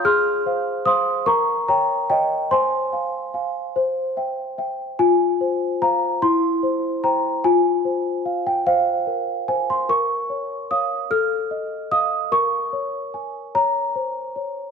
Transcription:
\new Staff \with { instrumentName = "Celesta" } { \time 6/8 \key f \minor \tempo 4. = 49 << { <c''' f'''>4 <c''' ees'''>8 <bes'' des'''>8 <g'' bes''>8 <ees'' g''>8 | <aes'' c'''>2~ <aes'' c'''>8 r8 | aes''4 bes''8 c'''4 bes''8 | aes''4~ aes''16 g''16 f''4 aes''16 c'''16 |
des'''4 ees'''8 f'''4 ees'''8 | des'''4. bes''4. | } \\ { aes'8 <c'' f''>8 <c'' f''>8 bes'8 des''8 des''8 | c''8 <f'' aes''>8 <f'' aes''>8 c''8 <e'' g''>8 <e'' g''>8 | f'8 c''8 <c'' f''>8 e'8 c''8 <c'' g''>8 | f'8 c''8 f''8 c''8 bes'8 c''8 |
bes'8 des''8 <des'' f''>8 a'8 ees''8 <ees'' f''>8 | bes'8 des''8 aes''8 des''8 c''8 des''8 | } >> }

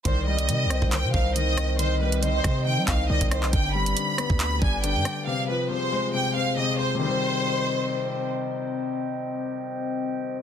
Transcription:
<<
  \new Staff \with { instrumentName = "Violin section" } { \time 4/4 \key c \minor \tempo 4 = 138 c''8 ees''4. g''8 f''8 ees''4 | c''8 b'8 c''4 g''8 f''8 ees''8 c''8 | g''8 b''4. b''8 aes''8 g''4 | f''8 b'8 c''4 g''8 f''8 ees''8 c''8 |
c''2. r4 | r1 | }
  \new Staff \with { instrumentName = "Soft synth lead" } { \time 4/4 \key c \minor d''2 c''2 | ees''2. d''8 c''8 | r1 | r1 |
r1 | r1 | }
  \new Staff \with { instrumentName = "Glass harmonica" } { \time 4/4 \key c \minor <c' ees' c'' g''>1~ | <c' ees' c'' g''>1 | <g g' b' d''>1 | <f' aes' c''>1 |
<c' c'' ees'' g''>1~ | <c' c'' ees'' g''>1 | }
  \new Staff \with { instrumentName = "Grand piano" } { \clef bass \time 4/4 \key c \minor ees8 g8 ees8 c'8 ees8 ees'8 ees4 | ees8 g8 ees8 c'8 ees8 ees'8 ees8 ees''8 | d8 g8 d8 b8 d8 d'8 d8 d''8 | c8 f8 c8 aes8 c8 c'8 c8 c''8 |
<c ees g c'>1~ | <c ees g c'>1 | }
  \new Staff \with { instrumentName = "808-style bass" } { \clef bass \time 4/4 \key c \minor c,4 c16. c,16. c,8 c16 c,4.~ | c,4. c8. g16 c,8 c,16 c,8 b,,16 | g,,4 r8. d,8. g,,8. g,16 r8 | r1 |
r1 | r1 | }
  \new DrumStaff \with { instrumentName = "Drums" } \drummode { \time 4/4 <hh bd>8. hh16 hh8 <hh ss>16 bd16 <hc hh>8 bd8 hh8 <hh ss>8 | hh8. hh16 hh8 <hh bd ss>8 r8 <hc hh bd>8 r16 <hh bd>16 <hh ss>16 hc16 | <hh bd>8. hh16 hh8 <hh ss>16 bd16 <hc hh>8 bd8 hh8 <hh ss>8 | r4 r4 r4 r4 |
r4 r4 r4 r4 | r4 r4 r4 r4 | }
>>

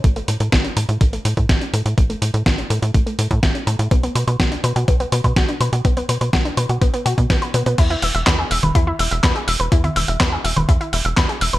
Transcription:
<<
  \new Staff \with { instrumentName = "Synth arpeggio sound" } { \time 4/4 \key e \dorian \tempo 4 = 124 a16 a16 a'16 a'16 e'16 cis'16 a'16 e'16 a16 a16 a'16 a'16 e'16 cis'16 a'16 e'16 | a16 a16 a'16 a'16 e'16 cis'16 a'16 e'16 a16 a16 a'16 a'16 e'16 cis'16 a'16 e'16 | b16 b16 b'16 b'16 fis'16 d'16 b'16 fis'16 b16 b16 b'16 b'16 fis'16 d'16 b'16 fis'16 | b16 b16 b'16 b'16 fis'16 d'16 b'16 fis'16 b16 b16 fis'16 b,16 b16 b'16 b16 b16 |
e'16 e'16 e''16 e''16 b'16 gis'16 e''16 b'16 e'16 e'16 e''16 e''16 b'16 gis'16 e''16 b'16 | e'16 e'16 e''16 e''16 b'16 gis'16 e''16 b'16 e'16 e'16 e''16 e''16 b'16 gis'16 e''16 b'16 | }
  \new Staff \with { instrumentName = "Analog synth bass" } { \clef bass \time 4/4 \key e \dorian a,,16 r16 a,16 a,16 a,,16 r16 a,16 a,16 a,,16 r16 a,16 a,16 a,,16 r16 a,16 a,16 | a,,16 r16 a,16 a,16 a,,16 r16 a,16 a,16 a,,16 r16 a,16 a,16 a,,16 r16 a,16 a,16 | b,,16 r16 b,16 b,16 b,,16 r16 b,16 b,16 b,,16 r16 b,16 b,16 b,,16 r16 b,16 b,16 | b,,16 r16 b,16 b,16 b,,16 r16 b,16 b,16 b,,16 r16 b,16 b,16 b,,16 r16 b,16 b,16 |
e,16 r16 e,,16 e,,16 e,16 r16 e,,16 e,,16 e,16 r16 e,,16 e,,16 e,16 r16 e,,16 e,,16 | e,16 r16 e,,16 e,,16 e,16 r16 e,,16 e,,16 e,16 r16 e,,16 e,,16 e,16 r16 e,,16 e,,16 | }
  \new DrumStaff \with { instrumentName = "Drums" } \drummode { \time 4/4 <hh bd>16 hh16 hh16 hh16 <hh bd sn>16 hh16 hh16 hh16 <hh bd>16 hh16 hh16 <hh bd>16 <hh bd sn>16 hh16 hh16 hh16 | <hh bd>16 hh16 hh16 hh16 <hh bd sn>16 hh16 hh16 hh16 <hh bd>16 hh16 hh16 <hh bd>16 <hh bd sn>16 hh16 hh16 hh16 | <hh bd>16 hh16 hh16 hh16 <hh bd sn>16 hh16 hh16 hh16 <hh bd>16 hh16 hh16 <hh bd>16 <hh bd sn>16 hh16 hh16 hh16 | <hh bd>16 hh16 hh16 hh16 <hh bd sn>16 hh16 hh16 hh16 <hh bd>16 hh16 hh16 <hh bd>16 <hh bd sn>16 hh16 hh16 hh16 |
<cymc hh bd>16 hh16 hho16 hh16 <hc hh bd sn>8 hho16 <cgho hh>16 <hh bd>8 hho16 hh16 <hc hh bd sn>16 hh16 hho16 hh16 | <hh bd>16 <cgho hh>16 hho16 hh16 <hc hh bd sn>8 hho16 <cgho hh>16 <hh bd>16 hh16 hho16 hh16 <hc hh bd sn>16 hh16 hho16 hh16 | }
>>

